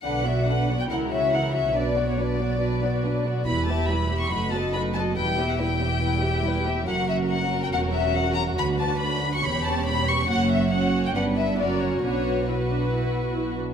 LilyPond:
<<
  \new Staff \with { instrumentName = "Violin section" } { \time 4/4 \key b \minor \tempo 4 = 140 fis''8 e''8 fis''8. g''16 fis''8 e''8 fis''8 e''8 | d''8. cis''16 d''2~ d''8 r8 | b''8 a''8 b''8. cis'''16 b''8 a''8 b''8 a''8 | g''8. fis''16 g''2~ g''8 r8 |
fis''8 e''8 fis''8. g''16 fis''8 e''8 fis''8 ais''8 | b''8 a''8 b''8. cis'''16 b''8 a''8 b''8 cis'''8 | fis''8 e''8 fis''8. g''16 fis''8 e''8 d''8 cis''8 | cis''4 b'2~ b'8 r8 | }
  \new Staff \with { instrumentName = "Violin section" } { \time 4/4 \key b \minor << { b'8 d''8 b'8 d''8 ais'8 cis''8 ais'8 cis''8 | b'8 d''8 b'8 d''8 b'8 d''8 b'8 d''8 | b'8 e''8 b'8 e''8 b'8 dis''8 b'8 dis''8 | b'8 e''8 b'8 e''8 b'8 e''8 b'8 e''8 |
ais'1 | b'2 cis''2 | cis''4 cis''4 b'4 ais'4 | b'4 b'2~ b'8 r8 | } \\ { d'8 fis'8 d'8 fis'8 e'8 fis'8 e'8 fis'8 | d'8 fis'8 d'8 fis'8 d'8 fis'8 d'8 fis'8 | e'8 g'8 e'8 g'8 fis'8 a'8 fis'8 a'8 | e'8 g'8 e'8 g'8 e'8 g'8 e'8 g'8 |
fis'1~ | fis'2 g'2 | fis'4 fis'4 d'4 fis'4 | fis'4 fis'2~ fis'8 r8 | } >> }
  \new Staff \with { instrumentName = "Viola section" } { \time 4/4 \key b \minor << { d'8 b8 d'8 b8 e'8 cis'8 e'8 cis'8 | d'8 b8 d'8 b8 d'8 b8 d'8 b8 | e'8 g'8 e'8 g'8 dis'8 fis'8 dis'8 fis'8 | e'8 g'8 e'8 g'8 e'8 g'8 e'8 g'8 |
cis'1 | d'2 cis'2 | cis'4 cis'4 d'8 e'8 fis'4 | fis'4 e'8 d'8 e'8. fis'16 e'8 d'8 | } \\ { d8 fis8 d8 fis8 e8 fis8 e8 fis8 | fis8 b8 fis8 b8 fis8 b8 fis8 b8 | g8 b8 g8 b8 a8 b8 a8 b8 | g8 b8 g8 b8 g8 b8 g8 b8 |
fis1~ | fis2 b2 | ais4 ais4 b4 cis'4 | d'4 r2. | } >> }
  \new Staff \with { instrumentName = "Cello section" } { \clef bass \time 4/4 \key b \minor b,2 cis2 | b,1 | e,2 fis,2 | e,1 |
fis,2 e,2 | d,2 e,2 | fis,2 g,4 fis,4 | b,2.~ b,8 r8 | }
  \new Staff \with { instrumentName = "Double bass section" } { \clef bass \time 4/4 \key b \minor b,,2 cis,2 | b,,1 | e,,2 fis,,2 | e,,1 |
fis,,2 e,,2 | d,2 e,,2 | fis,,2 g,,4 fis,,4 | b,,2.~ b,,8 r8 | }
>>